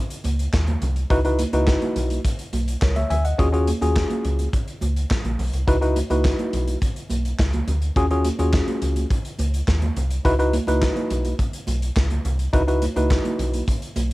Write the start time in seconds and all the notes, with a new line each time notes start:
0.10 closed hi-hat
0.24 C#2, closed hi-hat, high conga
0.39 closed hi-hat
0.53 D#2, kick, snare, clap, muted conga
0.67 closed hi-hat, high conga
0.82 C2, closed hi-hat, low conga
0.96 closed hi-hat
1.10 C#2 D#4 E4 F#4 B4, kick, closed hi-hat, muted conga
1.25 D#4 E4 F#4 B4, closed hi-hat
1.39 closed hi-hat, muted conga, high conga
1.53 C#2 D#4 E4 F#4 B4, closed hi-hat, high conga
1.67 kick, snare, clap, muted conga
1.82 closed hi-hat, high conga
1.96 B1, closed hi-hat, muted conga, low conga
2.10 closed hi-hat, high conga
2.25 kick, closed hi-hat
2.39 closed hi-hat
2.53 B1, closed hi-hat, muted conga, high conga
2.68 closed hi-hat
2.82 C#2 A#4 C#5, kick, snare, clap, muted conga
2.96 C#5 E5, closed hi-hat, high conga
3.10 D2 E5 G#5, closed hi-hat, low conga
3.25 D#5 F#5, closed hi-hat
3.38 D#2 C#4 F4 F#4 G#4, kick, closed hi-hat, muted conga
3.53 C#4 F4 F#4 G#4, closed hi-hat
3.67 closed hi-hat, high conga
3.81 D#2 C#4 F4 F#4 G#4, closed hi-hat, high conga
3.96 kick, snare, clap
4.10 closed hi-hat, high conga
4.25 C#2, closed hi-hat, low conga
4.39 closed hi-hat, high conga
4.53 kick, closed hi-hat, muted conga
4.68 closed hi-hat
4.81 C#2, closed hi-hat, muted conga, high conga
4.96 closed hi-hat
5.11 kick, snare, clap, muted conga
5.25 A#1, closed hi-hat, high conga
5.39 B1, open hi-hat, low conga
5.53 C2, closed hi-hat
5.67 C#2 D#4 E4 F#4 B4, kick, closed hi-hat
5.81 D#4 E4 F#4 B4, closed hi-hat
5.96 closed hi-hat, high conga
6.10 C#2 D#4 E4 F#4 B4, closed hi-hat, high conga
6.25 kick, snare, clap, muted conga
6.39 closed hi-hat, high conga
6.53 B1, closed hi-hat, low conga
6.68 closed hi-hat, high conga
6.82 kick, closed hi-hat
6.96 closed hi-hat
7.10 B1, closed hi-hat, muted conga, high conga
7.25 closed hi-hat
7.39 C#2, kick, snare, clap, muted conga
7.53 closed hi-hat, high conga
7.68 D2, closed hi-hat, muted conga, low conga
7.82 closed hi-hat
7.96 D#2 C#4 F4 F#4 G#4, kick, closed hi-hat, muted conga
8.11 C#4 F4 F#4 G#4, closed hi-hat
8.25 closed hi-hat, muted conga, high conga
8.39 D#2 C#4 F4 F#4 G#4, closed hi-hat, high conga
8.53 kick, snare, clap
8.68 closed hi-hat, high conga
8.82 C#2, closed hi-hat, low conga
8.96 closed hi-hat, high conga
9.10 kick, closed hi-hat, muted conga
9.25 closed hi-hat
9.39 C#2, closed hi-hat, high conga
9.54 closed hi-hat
9.68 D#2, kick, snare, clap, muted conga
9.82 closed hi-hat, high conga
9.96 C2, closed hi-hat, muted conga, low conga
10.10 closed hi-hat
10.25 C#2 D#4 E4 F#4 B4, kick, closed hi-hat
10.39 D#4 E4 F#4 B4, closed hi-hat
10.53 closed hi-hat, muted conga, high conga
10.67 C#2 D#4 E4 F#4 B4, closed hi-hat, high conga
10.82 kick, snare, clap
10.96 closed hi-hat, high conga
11.10 B1, closed hi-hat, low conga
11.25 closed hi-hat, high conga
11.39 kick, closed hi-hat
11.53 closed hi-hat
11.67 B1, closed hi-hat, muted conga, high conga
11.82 closed hi-hat
11.97 C#2, kick, snare, clap, muted conga
12.10 closed hi-hat, high conga
12.25 C2, closed hi-hat, low conga
12.39 closed hi-hat
12.53 C#2 D#4 E4 F#4 B4, kick, closed hi-hat, low conga
12.68 D#4 E4 F#4 B4, closed hi-hat
12.82 closed hi-hat, muted conga, high conga
12.96 C#2 D#4 E4 F#4 B4, closed hi-hat, high conga
13.11 kick, snare, clap, muted conga
13.25 closed hi-hat, high conga
13.39 B1, closed hi-hat, muted conga, low conga
13.54 closed hi-hat, high conga
13.68 kick, closed hi-hat
13.82 closed hi-hat
13.96 B1, closed hi-hat, muted conga, high conga